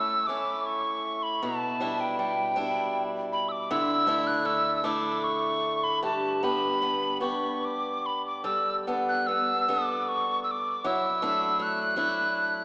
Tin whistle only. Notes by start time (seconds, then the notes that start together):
Already playing: E6
0.27 D6
0.66 C#6
1.23 B5
1.43 A5
2.00 G5
2.19 G5
3.33 B5
3.49 D6 E6
3.71 E6
4.27 F#6
4.46 E6
4.84 D6
5.24 C#6
5.84 B5
6.04 A5
6.44 B5
7.21 C#6
7.65 D6
8.06 B5
8.26 D6
8.44 E6
9.09 F#6
9.27 E6
9.69 D6
10.09 C#6
10.44 E6
10.51 D6
10.87 E6
11.62 F#6